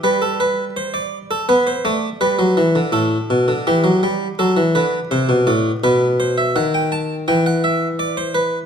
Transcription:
<<
  \new Staff \with { instrumentName = "Harpsichord" } { \time 4/4 \key a \minor \tempo 4 = 83 b'16 a'16 b'8 c''16 d''8 a'16 b'16 c''16 d''8 b'4 | a'4 g'4 a'8 b'8 c''8 d''8 | b'8 c''16 e''16 fis''16 g''16 a''8 g''16 fis''16 e''8 d''16 c''16 b'8 | }
  \new Staff \with { instrumentName = "Harpsichord" } { \clef bass \time 4/4 \key a \minor g2 b8 a8 g16 fis16 e16 d16 | a,8 b,16 d16 e16 fis16 g8 fis16 e16 d8 c16 b,16 a,8 | b,4 dis4 e2 | }
>>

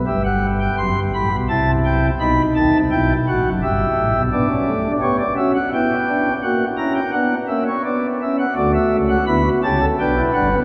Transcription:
<<
  \new Staff \with { instrumentName = "Pipe organ" } { \time 3/4 \key e \minor \tempo 4 = 85 << { e''16 fis''8 g''16 c'''8 b''8 a''8 g''8 | b''8 a''8 g''8 fis''8 e''4 | d''4 cis''16 d''16 e''16 fis''16 g''4 | fis''8 ais''16 g''16 fis''8 e''16 cis''16 d''8 e''16 fis''16 |
\key d \major d''16 e''8 fis''16 b''8 a''8 g''8 fis''8 | } \\ { g'2 e'4 | dis'4 e'8 fis'8 g'4 | b16 cis'8 d'16 g'8 fis'8 e'8 d'8 | fis'8 e'8 d'8 cis'8 r4 |
fis'4 e'16 fis'16 g'16 a'16 b'4 | } >> }
  \new Staff \with { instrumentName = "Pipe organ" } { \clef bass \time 3/4 \key e \minor << { r2. | r2. | d'8 a8 b8 cis'8 b4 | ais8 cis'8 b8 ais8 b8 cis'8 |
\key d \major a4 b8 cis'8 d'16 e'16 d'16 b16 | } \\ { <g,, g,>4 <fis,, fis,>16 <g,, g,>16 <a,, a,>16 <b,, b,>16 <c, c>4 | <b,, b,>8 <dis, dis>16 <c, c>16 <b,, b,>8 <a,, a,>16 <fis,, fis,>16 <g,, g,>8 <a,, a,>16 <b,, b,>16 | r2. | r2. |
<d, d>8 <cis, cis>8 <d, d>8 <cis, cis>8 <b,, b,>8 <g,, g,>8 | } >> }
>>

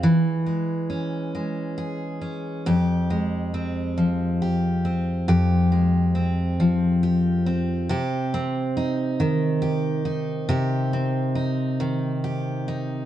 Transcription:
\new Staff \with { instrumentName = "Steel-string acoustic guitar" } { \time 6/8 \key f \minor \tempo 4. = 46 fes8 aes8 des'8 aes8 aes'8 des'8 | <f, g'>8 aes8 c'8 f8 g'8 c'8 | <f, g'>8 aes8 c'8 f8 g'8 c'8 | <c g'>8 c'8 ees'8 ees8 g'8 ees'8 |
<c g'>8 c'8 ees'8 ees8 g'8 ees'8 | }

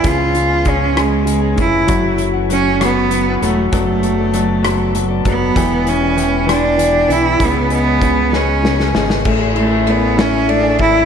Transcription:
<<
  \new Staff \with { instrumentName = "Cello" } { \time 6/8 \key a \major \tempo 4. = 65 eis'4 cis'8 gis4 e'8~ | e'8 r8 cis'8 b4 a8 | a2 r8 b8~ | b8 cis'4 d'4 e'8 |
b8 b4 cis'4 r8 | r8 a8 b8 cis'8 d'8 e'8 | }
  \new Staff \with { instrumentName = "Clean electric guitar" } { \time 6/8 \key a \major <cis eis b cis' gis'>16 <b gis'>8 <b cis' gis'>16 <eis b cis' gis'>8 <cis eis b cis' gis'>16 <b cis' gis'>8 <b cis' gis'>16 <eis b cis' gis'>8 | <fis, cis e a cis' fis'>16 <e a cis' fis'>8 <e a cis' fis'>16 <e a cis' fis'>8 <fis, cis e a cis' fis'>16 <e a cis' fis'>8 <e a cis' fis'>16 <e a cis' fis'>8 | <fis b d' a'>16 <b d' a'>8 <b d' a'>16 <fis b d' a'>8 <fis b d' a'>16 <b d' a'>8 <b d' a'>16 <fis b d' a'>8 | <e b d' g'>16 <b d' g'>8 <b d' g'>16 <e b g'>8 <e b d' g'>16 <b g'>8 <b d' g'>16 <e b d' g'>8 |
<cis eis b cis' gis'>16 <b cis' gis'>8 <b cis' gis'>16 <eis b cis' gis'>8 <cis eis b cis' gis'>16 <b cis' gis'>8 <b cis' gis'>16 <eis b cis' gis'>8 | <a cis' e' gis'>16 <cis' e' gis'>8 <cis' e' gis'>16 <a cis' e' gis'>8 <a cis' e' gis'>16 <cis' e' gis'>8 <cis' e' gis'>16 <a cis' e' gis'>8 | }
  \new Staff \with { instrumentName = "Grand piano" } { \clef bass \time 6/8 \key a \major cis8 cis8 cis8 cis8 cis8 cis8 | fis8 fis8 fis8 fis8 fis8 fis8 | fis8 fis8 fis8 fis8 fis8 fis8 | e8 e8 e8 e8 e8 e8 |
cis8 gis8 cis8 gis8 cis8 gis8 | a8 e'8 a8 e'8 a8 e'8 | }
  \new Staff \with { instrumentName = "Fingered electric bass" } { \clef bass \time 6/8 \key a \major cis,2~ cis,8 eis,,8 | fis,,2~ fis,,8 e,,8 | fis,,2~ fis,,8 fis,,8 | e,,2~ e,,8 b,,8 |
cis,2~ cis,8 gis,,8 | a,,2~ a,,8 gis,,8 | }
  \new DrumStaff \with { instrumentName = "Drums" } \drummode { \time 6/8 <hh bd>8 hh8 <hh bd>8 <hh ss>8 hh8 <hh bd>8 | <hh bd>8 hh8 hh8 <hh ss>8 hh8 hh8 | <hh bd>8 hh8 hh8 <hh ss>8 hh8 <hh bd>8 | <hh bd>8 hh8 hh8 <hh ss>8 hh8 hh8 |
<hh bd>8 hh8 <hh bd>8 sn8 sn16 sn16 sn16 sn16 | <cymc bd>8 cymr8 cymr8 <cymr sn>8 cymr8 <bd cymr>8 | }
>>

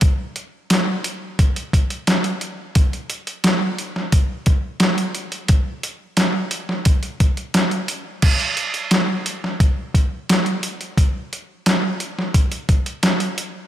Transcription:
\new DrumStaff \with { instrumentName = "Drums" } \drummode { \time 4/4 \tempo 4 = 88 <hh bd>8 hh8 <hh sn>8 hh8 <hh bd>16 hh16 <hh bd>16 hh16 <hh sn>16 hh16 hh8 | <hh bd>16 hh16 hh16 hh16 <hh sn>8 hh16 sn16 <hh bd>8 <hh bd>8 <hh sn>16 hh16 hh16 hh16 | <hh bd>8 hh8 <hh sn>8 hh16 sn16 <hh bd>16 hh16 <hh bd>16 hh16 <hh sn>16 hh16 hh8 | <cymc bd>16 hh16 hh16 hh16 <hh sn>8 hh16 sn16 <hh bd>8 <hh bd>8 <hh sn>16 hh16 hh16 hh16 |
<hh bd>8 hh8 <hh sn>8 hh16 sn16 <hh bd>16 hh16 <hh bd>16 hh16 <hh sn>16 hh16 hh8 | }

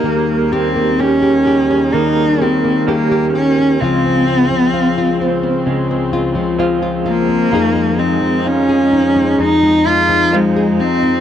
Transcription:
<<
  \new Staff \with { instrumentName = "Nylon-string guitar" } { \time 4/4 \key ees \mixolydian \tempo 4 = 64 << { r8 g'8 g'16 g'16 g'16 des'8 r16 g'8 g'16 g'16 g'16 des'16 | <f c' f'>16 c'16 f'8 f'16 f'16 f'16 c'8 c'16 f'8 f'16 f'16 f'16 c'16 | <f aes ees' aes'>16 aes16 ees'8 ees'16 aes'16 ees'16 aes8 aes16 ees'8 ees'16 aes'16 ees'16 aes16 | } \\ { ees8. bes4~ bes16 ees8. bes4~ bes16 | des8. f4~ f16 des8. f4~ f16 | f,8. f4~ f16 f,8. f4~ f16 | } >> }
  \new Staff \with { instrumentName = "Cello" } { \time 4/4 \key ees \mixolydian bes8 c'8 des'4 ees'8 c'8 bes8 des'8 | c'2 r4. bes8~ | bes8 c'8 des'4 ees'8 f'8 aes8 c'8 | }
  \new Staff \with { instrumentName = "Clean electric guitar" } { \time 4/4 \key ees \mixolydian <bes g'>8 bes8 g'4 bes4 <bes des' g'>4 | <aes f'>8 aes8 f'8 c'8 aes4 <aes c' f'>4 | <ees f'>8 aes8 f'4 aes4 <aes c' f'>4 | }
  \new Staff \with { instrumentName = "String section" } { \clef bass \time 4/4 \key ees \mixolydian <ees, des ees g>1 | <des, des f c'>1 | <f, aes ees'>1 | }
>>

